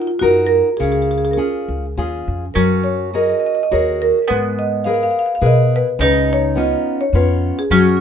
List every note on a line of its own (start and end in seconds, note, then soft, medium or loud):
0.02 0.06 F4 soft
0.08 0.16 F4 medium
0.19 0.60 F#2 medium
0.19 0.68 D#4 soft
0.19 0.48 F#4 medium
0.19 0.68 F#4 soft
0.19 0.69 A#4 soft
0.47 0.60 A#4 medium
0.77 1.38 C#2 medium
0.77 1.36 C#3 medium
0.77 0.82 G#4 medium
0.83 0.91 G#4 soft
0.92 1.01 G#4 medium
1.02 1.10 G#4 medium
1.11 1.17 G#4 medium
1.18 1.23 G#4 soft
1.25 1.32 G#4 medium
1.31 2.21 G#4 medium
1.31 1.38 A#4 soft
1.37 1.84 C#4 soft
1.37 1.84 F4 soft
1.37 1.85 G#4 soft
1.68 1.94 C#2 medium
1.97 2.24 D#2 medium
1.97 2.44 C#4 soft
1.97 2.44 F4 soft
1.97 2.44 G#4 soft
2.28 2.53 F2 medium
2.54 3.31 F#2 medium
2.54 3.12 F#3 soft
2.54 4.25 C#4 medium
2.54 2.82 A#4 medium
2.84 3.13 C#5 medium
3.14 3.60 F#4 soft
3.14 3.60 G#4 soft
3.14 3.61 A#4 soft
3.14 3.20 D#5 medium
3.21 3.28 D#5 soft
3.30 3.37 D#5 medium
3.40 3.45 D#5 medium
3.46 3.53 D#5 medium
3.55 3.61 D#5 medium
3.63 3.69 D#5 medium
3.71 4.10 D#2 medium
3.71 4.18 F#4 soft
3.71 4.18 G#4 soft
3.71 4.18 A#4 soft
3.71 4.00 C#5 medium
4.02 4.28 A#4 medium
4.28 5.04 G#2 medium
4.28 4.85 G#3 medium
4.28 6.04 B3 medium
4.28 4.56 B4 medium
4.59 4.71 D#5 medium
4.84 5.31 G#4 soft
4.84 5.32 A#4 soft
4.84 5.32 B4 soft
4.84 4.93 F5 medium
4.94 5.02 F5 soft
5.03 5.10 F5 medium
5.11 5.18 F5 medium
5.19 5.25 F5 medium
5.26 5.33 F5 medium
5.35 5.41 F5 medium
5.41 5.79 B2 medium
5.41 5.88 G#4 soft
5.41 5.87 A#4 soft
5.41 5.88 B4 soft
5.46 5.75 D#5 medium
5.76 6.00 B4 medium
5.99 6.73 C#2 medium
5.99 6.55 C#3 medium
5.99 7.77 D#4 medium
5.99 6.29 B4 medium
6.33 6.44 C#5 medium
6.55 7.02 B3 soft
6.55 7.02 C#4 soft
6.55 7.03 F4 soft
6.55 6.98 D#5 medium
7.01 7.13 C#5 medium
7.13 7.51 F2 medium
7.13 7.60 B3 soft
7.13 7.60 C#4 soft
7.13 7.60 F4 soft
7.13 7.55 B4 medium
7.59 7.71 G#4 medium
7.70 8.01 F#2 medium
7.70 8.01 F#3 medium
7.70 8.01 C#4 medium
7.70 7.79 F#4 medium
7.81 7.88 F#4 soft
7.89 7.96 F#4 medium
7.97 8.01 F#4 soft